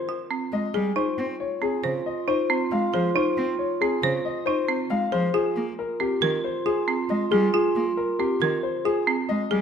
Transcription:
Already playing: clarinet F4, grand piano C5
0.09 marimba F4
0.31 marimba C4
0.52 cello G#3, grand piano D#5
0.74 cello G3, grand piano G#4, marimba G#4
0.96 marimba D#4, clarinet F4, grand piano C5
1.18 cello C4
1.40 grand piano C#5
1.62 marimba C4, grand piano G#4
1.83 cello C#3, marimba C5
2.06 grand piano D#5
2.28 marimba D#4, grand piano C5
2.50 marimba C4
2.71 cello G#3, grand piano F5
2.93 cello F3, marimba G#4, grand piano C5
3.15 marimba D#4, grand piano C5
3.37 cello C4
3.59 grand piano C#5
3.81 marimba C4, grand piano G#4
4.03 cello C#3, marimba C5
4.25 grand piano D#5
4.46 marimba D#4, grand piano C5
4.68 marimba C4
4.90 cello G#3, grand piano F5
5.12 cello F3, marimba G#4, grand piano C5
5.34 marimba F4, clarinet F4, grand piano G#4
5.56 cello A#3
5.79 grand piano A#4
6.00 marimba C4, grand piano G4
6.21 cello D#3, marimba A#4
6.44 grand piano C5
6.66 marimba F4, grand piano G#4
6.88 marimba C4
7.09 cello G#3, grand piano D#5
7.31 cello G3, grand piano G#4, marimba G#4
7.54 marimba F4, grand piano G#4
7.76 cello A#3
7.97 grand piano A#4
8.19 marimba C4, grand piano G4
8.41 cello D#3, marimba A#4
8.63 grand piano C5
8.85 marimba F4, grand piano G#4
9.07 marimba C4
9.29 cello G#3, grand piano D#5
9.51 cello G3, grand piano G#4, marimba G#4

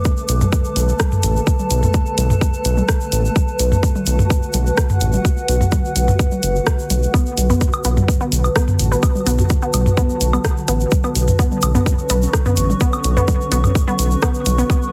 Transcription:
Already playing: ambient pad D3 B4 D6, synth texture A3 A4
0.05 kick, shaker
0.17 shaker
0.29 analog synth bass B1, closed hi-hat, shaker
0.39 ambient pad A5, mid tom, high tom, shaker
0.52 kick, shaker
0.65 shaker
0.76 analog synth bass B1, closed hi-hat, shaker
0.88 shaker
0.99 kick, cross-stick, high tom, shaker
1.12 mid tom, shaker
1.23 analog synth bass A1, closed hi-hat, shaker
1.36 shaker
1.47 kick, shaker
1.59 high tom, shaker
1.70 analog synth bass B1, closed hi-hat, shaker
1.83 mid tom, shaker
1.94 kick, shaker
2.06 shaker
2.18 analog synth bass B1, closed hi-hat, high tom, shaker
2.30 mid tom, shaker
2.41 kick, shaker
2.54 shaker
2.65 analog synth bass B1, closed hi-hat, shaker
2.77 high tom, shaker
2.89 kick, cross-stick, shaker
3.01 shaker
3.12 analog synth bass A1, closed hi-hat, shaker
3.25 shaker
3.36 synth texture F#4, kick, high tom, shaker
3.48 shaker
3.59 analog synth bass B1, closed hi-hat, shaker
3.72 mid tom, shaker
3.83 kick, shaker
3.95 high tom, shaker
4.06 analog synth bass B1, closed hi-hat, shaker
4.17 ambient pad F#5, mid tom, shaker
4.30 kick, shaker
4.43 shaker
4.53 analog synth bass B1, closed hi-hat, high tom, shaker
4.66 shaker
4.77 kick, cross-stick, shaker
4.89 mid tom, shaker
5.01 analog synth bass A1, closed hi-hat, shaker
5.13 high tom, shaker
5.25 kick, shaker
5.37 shaker
5.48 analog synth bass B1, closed hi-hat, shaker
5.61 mid tom, shaker
5.72 kick, high tom, shaker
5.85 shaker
5.96 analog synth bass B1, closed hi-hat, shaker
6.08 mid tom, shaker
6.19 kick, shaker
6.31 high tom, shaker
6.43 analog synth bass F#1, closed hi-hat, shaker
6.55 shaker
6.67 kick, cross-stick, shaker
6.79 shaker
6.90 analog synth bass B1, closed hi-hat, high tom, shaker
7.03 shaker
7.14 synth texture F#3 F#4, synth pluck B3, kick, high woodblock, shaker
7.26 shaker
7.38 analog synth bass B1, closed hi-hat, high tom, shaker
7.50 synth pluck B3, mid tom, shaker
7.61 kick, shaker
7.73 high woodblock, shaker
7.84 analog synth bass B1, synth pluck B3, closed hi-hat, shaker
7.95 ambient pad A5, mid tom, high tom, shaker
8.08 kick, shaker
8.21 synth pluck B3, shaker
8.32 analog synth bass B1, closed hi-hat, shaker
8.44 high woodblock, shaker
8.56 synth pluck B3, kick, cross-stick, high tom, shaker
8.68 mid tom, shaker
8.79 analog synth bass A1, closed hi-hat, shaker
8.92 synth pluck B3, shaker
9.03 kick, high woodblock, shaker
9.15 high tom, shaker
9.26 analog synth bass B1, synth pluck B3, closed hi-hat, shaker
9.38 mid tom, shaker
9.50 kick, shaker
9.62 synth pluck B3, shaker
9.74 analog synth bass B1, closed hi-hat, high tom, high woodblock, shaker
9.86 mid tom, shaker
9.97 synth pluck B3, kick, shaker
10.09 shaker
10.21 analog synth bass B1, closed hi-hat, shaker
10.33 synth pluck B3, high tom, high woodblock, shaker
10.45 kick, cross-stick, shaker
10.57 shaker
10.68 analog synth bass A1, synth pluck B3, closed hi-hat, shaker
10.80 shaker
10.91 synth texture C#4, kick, high tom, shaker
11.04 synth pluck B3, high woodblock, shaker
11.15 analog synth bass B1, closed hi-hat, shaker
11.28 mid tom, shaker
11.39 synth pluck B3, kick, shaker
11.51 high tom, shaker
11.62 analog synth bass B1, closed hi-hat, high woodblock, shaker
11.73 synth pluck B3, ambient pad C#6, mid tom, shaker
11.86 kick, shaker
11.98 shaker
12.10 analog synth bass B1, synth pluck B3, closed hi-hat, high tom, shaker
12.22 shaker
12.33 kick, cross-stick, high woodblock, shaker
12.46 synth pluck B3, mid tom, shaker
12.57 analog synth bass A1, closed hi-hat, shaker
12.70 high tom, shaker
12.81 synth pluck B3, kick, shaker
12.93 high woodblock, shaker
13.04 analog synth bass B1, closed hi-hat, shaker
13.17 synth pluck B3, mid tom, shaker
13.28 kick, high tom, shaker
13.41 shaker
13.52 analog synth bass B1, synth pluck B3, closed hi-hat, shaker
13.64 mid tom, high woodblock, shaker
13.75 kick, shaker
13.88 synth pluck B3, high tom, shaker
13.99 analog synth bass B1, closed hi-hat, shaker
14.11 shaker
14.22 synth pluck B3, kick, cross-stick, high woodblock, shaker
14.34 shaker
14.46 analog synth bass B1, closed hi-hat, high tom, shaker
14.58 synth pluck B3, shaker
14.70 synth pluck B3, synth texture F#4, kick, high woodblock, shaker
14.82 shaker

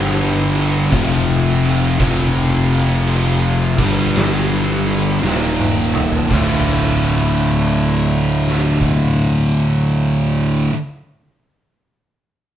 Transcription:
Already playing: picked electric bass G1, distorted electric guitar G2 D3 G3
0.55 crash
0.91 picked electric bass F1, distorted electric guitar F2 C3 F3, kick, crash
1.63 snare, crash
1.99 picked electric bass F1, distorted electric guitar F2 C3 F3, kick, crash
2.71 crash
3.07 crash
3.77 picked electric bass G1, distorted electric guitar G2 D3 G3, kick, crash
4.16 snare, crash
4.86 crash
5.23 picked electric bass D#1, distorted electric guitar D#2 A#2 D#3, snare
5.58 high tom
5.94 mid tom
6.12 floor tom
6.29 picked electric bass D1, distorted electric guitar D2 A2 D3 A3, kick, crash
6.33 distorted electric guitar F4
8.48 snare
8.81 kick

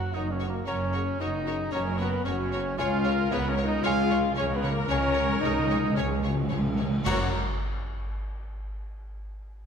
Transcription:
Already playing: french horn section F#4, cor anglais F#4, viola section A#4, trumpet F#5
0.13 double bass section F#1, cello section F#2, french horn section D#4, cor anglais D#4, viola section F#4, violin section F#4 A#4 C#5, trumpet D#5
0.31 cor anglais C#4, french horn section C#4, trumpet C#5
0.40 violin section F#4 A#4 C#5
0.49 cor anglais A#3, french horn section A#3, trumpet A#4
0.65 double bass section F#1, cello section F#2, french horn section C#4, cor anglais C#4, violin section F#4 A#4 C#5, viola section A#4, clarinet C#5, trumpet C#5, flute A#5
0.93 violin section F#4 A#4 C#5, viola section G#4
1.19 double bass section F#1, cello section F#2, french horn section D#4, cor anglais D#4, viola section F#4, violin section F#4 A#4 C#5, trumpet D#5
1.46 violin section F#4 A#4 C#5, viola section G#4
1.72 double bass section F#1, cello section F#2, cor anglais C#4, french horn section C#4, violin section F#4 A#4 C#5, viola section A#4, trumpet C#5, clarinet C#5, flute A#5
1.98 cor anglais B3, french horn section B3, violin section F#4 A#4 C#5, trumpet B4
2.25 double bass section F#1, cello section F#2, cor anglais C#4, french horn section C#4, violin section F#4 A#4 C#5, viola section F#4, trumpet C#5
2.52 violin section F#4 A#4 C#5
2.78 cello section C#2, double bass section C#2, timpani C#3, cor anglais F4, french horn section F4, violin section G#4 C#5, viola section G#4, clarinet C#5, trumpet F5, flute G#5
2.86 timpani C#3
2.93 timpani C#3
3.01 timpani C#3, violin section G#4 C#5
3.05 viola section A#4
3.17 timpani C#3
3.23 timpani C#3
3.31 cello section C#2, double bass section C#2, cor anglais B3, french horn section B3, violin section G#4 C#5, trumpet B4
3.39 timpani C#3
3.46 timpani C#3, cor anglais C#4, french horn section C#4
3.51 timpani C#3, trumpet C#5
3.57 violin section G#4 C#5
3.65 french horn section D#4, cor anglais D#4, trumpet D#5
3.75 timpani C#3
3.82 cello section C#2, double bass section C#2, timpani C#3, french horn section F4, cor anglais F4, viola section G#4, violin section G#4 C#5, clarinet C#5, flute G#5
3.86 timpani C#3, trumpet F5
3.97 timpani C#3
4.09 violin section G#4 C#5
4.19 timpani C#3
4.26 timpani C#3
4.34 double bass section C#2, cello section C#2, timpani C#3, cor anglais C#4, french horn section C#4, violin section G#4 C#5, viola section A#4
4.39 timpani C#3, trumpet C#5
4.50 timpani C#3, cor anglais B3
4.55 timpani C#3, french horn section B3, trumpet B4
4.63 timpani C#3, violin section G#4 C#5
4.70 timpani C#3, cor anglais A#3, french horn section A#3, trumpet A#4
4.78 timpani C#3
4.85 timpani C#3, french horn section C#4, cor anglais C#4, violin section C#5
4.90 double bass section C#2, cello section C#2, timpani C#3, violin section G#4 C#5, clarinet C#5, trumpet C#5, flute G#5
5.07 timpani C#3
5.15 timpani C#3, violin section G#4 C#5
5.22 timpani C#3
5.29 timpani C#3
5.36 timpani C#3
5.40 double bass section C#2, cello section C#2, timpani C#3, cor anglais D#4, french horn section D#4, violin section G#4 C#5, trumpet D#5
5.51 timpani C#3
5.59 timpani C#3
5.67 timpani C#3, violin section G#4 C#5
5.75 timpani C#3
5.81 timpani C#3
5.90 timpani C#3, french horn section C#4
5.95 double bass section C#2, cello section C#2, timpani C#3, cor anglais C#4, viola section G#4, violin section G#4 C#5, clarinet C#5, trumpet C#5, flute G#5
6.05 timpani C#3
6.12 timpani C#3
6.19 timpani C#3, violin section C#5
6.24 viola section F#4, violin section G#4 C#5
6.28 timpani C#3
6.35 timpani C#3
6.43 timpani C#3
6.49 double bass section C#2, cello section C#2, timpani C#3, viola section F4, violin section G#4 C#5
6.59 timpani C#3
6.67 timpani C#3
6.75 timpani C#3, violin section C#5
6.79 timpani C#3, violin section G#4 C#5
6.91 timpani C#3
6.97 timpani C#3
7.05 double bass section F#1, timpani F#2, cello section F#2, viola section F#4, french horn section F#4, cor anglais F#4, trumpet F#4, violin section A#4 C#5, clarinet C#5, flute A#5, concert bass drum, crash

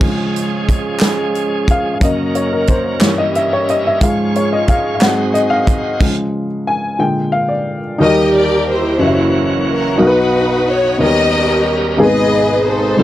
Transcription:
Already playing: french horn section G#3
0.01 upright piano C#3 F3 G#3, tonewheel organ F3 G#3 C#4 G#4, french horn section C#4 F4 G#4, kick, crash
0.36 closed hi-hat
0.69 kick, closed hi-hat
1.00 snare, clap, closed hi-hat
1.35 closed hi-hat
1.68 upright piano F5, kick, closed hi-hat
1.93 upright piano F5
2.00 upright piano F#2 C#3 A#3 D#5, tonewheel organ F#3 A#3 C#4 A#4, french horn section A#3 F#4 A#4, kick, closed hi-hat
2.35 upright piano C#5, closed hi-hat
2.52 upright piano A#4
2.67 upright piano C5, kick, closed hi-hat
2.99 upright piano G2 E3 A#3 C#5, tonewheel organ G3 C#4 E4 A#4, french horn section E4 G4, snare, clap, closed hi-hat
3.18 upright piano D#5
3.35 upright piano E5, closed hi-hat
3.53 upright piano C#5
3.69 upright piano D#5, closed hi-hat
3.87 upright piano E5
3.99 upright piano G#2 F3 G#3 F5, french horn section G#3 F4 G#4, tonewheel organ G#3 C#4 F4 C5, kick, closed hi-hat
4.08 tonewheel organ C#5
4.35 upright piano C#5, closed hi-hat
4.53 upright piano D#5
4.68 upright piano F5, kick, closed hi-hat
4.95 upright piano F5
5.00 upright piano G#2 F#3 C4 F#5, tonewheel organ G#3 D#4 F#4 C5, french horn section C4 D#4 F#4 G#4, snare, clap, closed hi-hat
5.34 upright piano D#5, closed hi-hat
5.50 upright piano F5
5.67 kick, closed hi-hat
6.00 upright piano C#3 F3 G#3, kick, crash
6.67 upright piano G#5
6.99 upright piano A#2 D3 G#3 G5
7.32 upright piano F5
7.48 upright piano D5
7.98 upright piano D#2 G3 D#4 F#4 A#4, tonewheel organ A#3 G4
8.03 string section G4 A#4 D#5, upright piano G4
8.37 string section D5
8.70 string section E4 C5
8.98 upright piano F#1 F#2 C#4 E4 F#4 A#4 D#5, tonewheel organ E3 F#3 A#3 C#4 F#4
9.07 upright piano E5
9.69 string section A#4
9.98 upright piano B1 B2 D#4 F#4 A#4, tonewheel organ B3 D#4 F#4
10.03 string section D#4 F#4 B4
10.07 upright piano B4
10.69 string section C#5
10.98 upright piano D#2 D#3 B3 D#4 F#4 A#4 C#5, tonewheel organ G3 B3 C#4 D#4 A#4, string section A#4
11.02 string section G4 D#5, upright piano G4
11.97 upright piano G#1 G#2 A#3 D#4 G#4, tonewheel organ B2 D#4, string section G#4 B4 D#5
12.03 upright piano B3
12.66 string section D#4 A4 C5
12.97 upright piano F1 F2 G3 C4 D#4 F4 A4, tonewheel organ G3 C4 D#4 F4 A4

